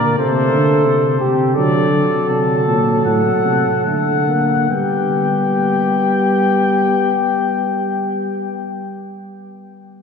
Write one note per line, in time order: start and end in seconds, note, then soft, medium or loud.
0.00 0.18 A#2 medium
0.00 0.16 A#3 medium
0.00 0.17 A#4 medium
0.00 0.17 D5 medium
0.19 0.52 C3 medium
0.19 1.22 A3 medium
0.19 1.19 A4 medium
0.19 1.22 C5 medium
0.53 0.88 D3 medium
0.86 1.21 C3 medium
1.20 1.56 C3 medium
1.20 1.57 G4 medium
1.55 2.02 D3 medium
1.55 1.89 F#3 medium
1.55 4.53 A4 medium
1.55 2.25 D5 medium
1.92 3.81 F#3 medium
2.29 2.69 C3 medium
2.29 3.04 A5 medium
2.67 3.05 A#2 medium
3.05 3.22 A2 medium
3.05 3.83 F#5 medium
3.45 3.61 C3 medium
3.85 4.69 D3 medium
3.85 4.26 A3 medium
3.85 4.68 F#5 medium
4.27 4.69 A#3 medium
4.70 8.76 G3 medium
4.70 8.76 B3 medium
4.70 8.75 G4 medium
4.70 8.77 G5 medium